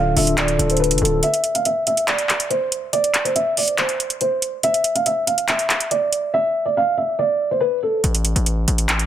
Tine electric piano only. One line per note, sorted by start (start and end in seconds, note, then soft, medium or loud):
0.00 0.15 D3 loud
0.00 0.16 D4 medium
0.00 0.17 F4 medium
0.00 0.18 A4 loud
0.15 0.45 D3 medium
0.15 0.46 D4 medium
0.15 0.46 F4 medium
0.15 0.47 A4 medium
0.58 0.88 D3 medium
0.58 0.88 D4 medium
0.58 0.89 F4 medium
0.58 0.89 A4 medium
1.00 1.16 D3 medium
1.00 1.16 D4 medium
1.00 1.17 F4 medium
1.00 1.17 A4 medium